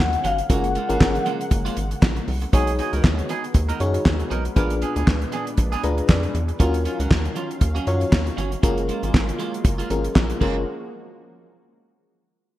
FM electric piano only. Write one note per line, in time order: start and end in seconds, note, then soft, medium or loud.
0.49 0.78 C#4 medium
0.49 0.78 F4 medium
0.49 0.78 G#4 medium
0.49 0.78 A#4 medium
0.89 0.97 C#4 medium
0.89 0.97 F4 medium
0.89 0.98 G#4 medium
0.89 0.98 A#4 loud
1.00 1.75 F3 medium
1.00 1.75 C#4 medium
1.00 1.75 G#4 medium
1.00 1.75 A#4 medium
2.53 3.28 D#4 medium
2.53 3.28 F#4 medium
2.53 3.28 G#4 medium
2.53 3.28 C#5 medium
3.80 4.37 D#4 medium
3.80 4.37 F#4 medium
3.80 4.37 G#4 medium
3.80 4.37 C#5 loud
4.56 5.31 D4 medium
4.56 5.31 F4 medium
4.56 5.31 G#4 medium
4.56 5.31 B4 loud
5.83 6.40 D4 medium
5.83 6.40 F4 medium
5.83 6.40 G#4 medium
5.83 6.40 B4 medium
5.83 6.07 A#5 medium
6.09 6.56 D5 medium
6.59 7.34 C#4 medium
6.59 7.35 F4 medium
6.59 7.35 F#4 medium
6.59 7.35 A#4 loud
7.87 8.43 C#4 medium
7.87 8.43 F4 medium
7.87 8.44 F#4 medium
7.87 8.44 C#5 loud
8.63 9.38 C#4 medium
8.63 9.38 F4 medium
8.63 9.38 G#4 medium
8.63 9.38 A#4 loud
9.90 10.40 C#4 medium
9.90 10.40 F4 medium
9.90 10.40 G#4 medium
9.90 10.40 A#4 medium
10.41 10.65 C#4 medium
10.41 10.65 F4 medium
10.41 10.65 G#4 medium
10.41 10.65 A#4 loud